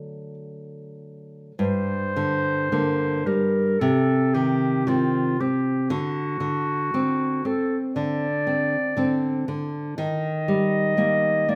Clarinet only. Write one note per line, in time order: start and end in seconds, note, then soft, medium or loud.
1.59 3.28 C5 medium
3.26 3.81 A#4 medium
3.79 4.36 A4 medium
4.34 4.89 G4 medium
4.87 5.42 F4 medium
5.40 5.90 G4 medium
5.91 7.48 F#4 medium
7.46 7.79 A4 medium
7.96 9.43 D5 medium
9.98 11.51 D#5 medium
11.49 11.55 D5 medium